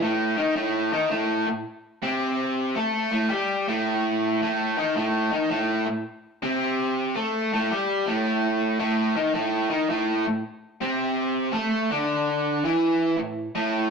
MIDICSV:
0, 0, Header, 1, 2, 480
1, 0, Start_track
1, 0, Key_signature, 0, "minor"
1, 0, Tempo, 548446
1, 15, Time_signature, 4, 2, 24, 8
1, 12166, End_track
2, 0, Start_track
2, 0, Title_t, "Overdriven electric guitar"
2, 0, Program_c, 0, 29
2, 15, Note_on_c, 0, 45, 89
2, 23, Note_on_c, 0, 57, 95
2, 321, Note_off_c, 0, 45, 0
2, 324, Note_off_c, 0, 57, 0
2, 325, Note_on_c, 0, 51, 85
2, 328, Note_on_c, 0, 63, 109
2, 485, Note_off_c, 0, 51, 0
2, 486, Note_off_c, 0, 63, 0
2, 489, Note_on_c, 0, 45, 91
2, 491, Note_on_c, 0, 57, 114
2, 807, Note_off_c, 0, 45, 0
2, 807, Note_off_c, 0, 57, 0
2, 812, Note_on_c, 0, 51, 82
2, 817, Note_on_c, 0, 63, 96
2, 964, Note_off_c, 0, 51, 0
2, 968, Note_on_c, 0, 45, 93
2, 972, Note_off_c, 0, 63, 0
2, 977, Note_on_c, 0, 57, 104
2, 1279, Note_off_c, 0, 45, 0
2, 1290, Note_on_c, 0, 45, 75
2, 1291, Note_off_c, 0, 57, 0
2, 1422, Note_off_c, 0, 45, 0
2, 1774, Note_on_c, 0, 48, 83
2, 1778, Note_on_c, 0, 60, 101
2, 2408, Note_on_c, 0, 57, 91
2, 2412, Note_off_c, 0, 48, 0
2, 2414, Note_off_c, 0, 60, 0
2, 2418, Note_on_c, 0, 69, 120
2, 2720, Note_off_c, 0, 57, 0
2, 2727, Note_on_c, 0, 45, 74
2, 2730, Note_on_c, 0, 57, 99
2, 2732, Note_off_c, 0, 69, 0
2, 2882, Note_on_c, 0, 55, 81
2, 2888, Note_off_c, 0, 45, 0
2, 2888, Note_on_c, 0, 67, 82
2, 2890, Note_off_c, 0, 57, 0
2, 3205, Note_off_c, 0, 55, 0
2, 3207, Note_off_c, 0, 67, 0
2, 3218, Note_on_c, 0, 45, 96
2, 3222, Note_on_c, 0, 57, 104
2, 3854, Note_off_c, 0, 45, 0
2, 3856, Note_off_c, 0, 57, 0
2, 3866, Note_on_c, 0, 45, 88
2, 3871, Note_on_c, 0, 57, 100
2, 4174, Note_off_c, 0, 45, 0
2, 4177, Note_on_c, 0, 51, 91
2, 4179, Note_off_c, 0, 57, 0
2, 4184, Note_on_c, 0, 63, 105
2, 4333, Note_off_c, 0, 51, 0
2, 4337, Note_off_c, 0, 63, 0
2, 4337, Note_on_c, 0, 45, 89
2, 4345, Note_on_c, 0, 57, 103
2, 4651, Note_off_c, 0, 45, 0
2, 4656, Note_off_c, 0, 57, 0
2, 4657, Note_on_c, 0, 51, 73
2, 4665, Note_on_c, 0, 63, 86
2, 4811, Note_off_c, 0, 51, 0
2, 4815, Note_on_c, 0, 45, 80
2, 4817, Note_off_c, 0, 63, 0
2, 4824, Note_on_c, 0, 57, 85
2, 5130, Note_off_c, 0, 45, 0
2, 5135, Note_off_c, 0, 57, 0
2, 5139, Note_on_c, 0, 45, 75
2, 5267, Note_off_c, 0, 45, 0
2, 5623, Note_on_c, 0, 48, 86
2, 5626, Note_on_c, 0, 60, 103
2, 6254, Note_off_c, 0, 48, 0
2, 6256, Note_off_c, 0, 60, 0
2, 6265, Note_on_c, 0, 57, 99
2, 6267, Note_on_c, 0, 69, 108
2, 6574, Note_off_c, 0, 57, 0
2, 6575, Note_off_c, 0, 69, 0
2, 6585, Note_on_c, 0, 45, 87
2, 6594, Note_on_c, 0, 57, 106
2, 6735, Note_off_c, 0, 45, 0
2, 6739, Note_off_c, 0, 57, 0
2, 6747, Note_on_c, 0, 55, 87
2, 6749, Note_on_c, 0, 67, 111
2, 7054, Note_off_c, 0, 55, 0
2, 7055, Note_off_c, 0, 67, 0
2, 7055, Note_on_c, 0, 45, 96
2, 7063, Note_on_c, 0, 57, 95
2, 7688, Note_off_c, 0, 45, 0
2, 7688, Note_off_c, 0, 57, 0
2, 7698, Note_on_c, 0, 45, 94
2, 7699, Note_on_c, 0, 57, 110
2, 8008, Note_off_c, 0, 45, 0
2, 8009, Note_off_c, 0, 57, 0
2, 8021, Note_on_c, 0, 51, 97
2, 8021, Note_on_c, 0, 63, 105
2, 8171, Note_off_c, 0, 51, 0
2, 8171, Note_off_c, 0, 63, 0
2, 8177, Note_on_c, 0, 45, 103
2, 8181, Note_on_c, 0, 57, 118
2, 8488, Note_off_c, 0, 45, 0
2, 8490, Note_off_c, 0, 57, 0
2, 8491, Note_on_c, 0, 51, 83
2, 8494, Note_on_c, 0, 63, 86
2, 8646, Note_off_c, 0, 51, 0
2, 8647, Note_off_c, 0, 63, 0
2, 8659, Note_on_c, 0, 45, 90
2, 8662, Note_on_c, 0, 57, 100
2, 8968, Note_off_c, 0, 45, 0
2, 8970, Note_off_c, 0, 57, 0
2, 8992, Note_on_c, 0, 45, 67
2, 9109, Note_off_c, 0, 45, 0
2, 9459, Note_on_c, 0, 48, 83
2, 9462, Note_on_c, 0, 60, 97
2, 10083, Note_on_c, 0, 57, 101
2, 10087, Note_on_c, 0, 69, 110
2, 10089, Note_off_c, 0, 48, 0
2, 10091, Note_off_c, 0, 60, 0
2, 10400, Note_off_c, 0, 57, 0
2, 10402, Note_off_c, 0, 69, 0
2, 10419, Note_on_c, 0, 50, 83
2, 10427, Note_on_c, 0, 62, 100
2, 11050, Note_off_c, 0, 50, 0
2, 11054, Note_off_c, 0, 62, 0
2, 11066, Note_on_c, 0, 52, 91
2, 11077, Note_on_c, 0, 64, 107
2, 11534, Note_off_c, 0, 52, 0
2, 11537, Note_on_c, 0, 45, 68
2, 11541, Note_off_c, 0, 64, 0
2, 11794, Note_off_c, 0, 45, 0
2, 11862, Note_on_c, 0, 45, 89
2, 11862, Note_on_c, 0, 57, 92
2, 12166, Note_off_c, 0, 45, 0
2, 12166, Note_off_c, 0, 57, 0
2, 12166, End_track
0, 0, End_of_file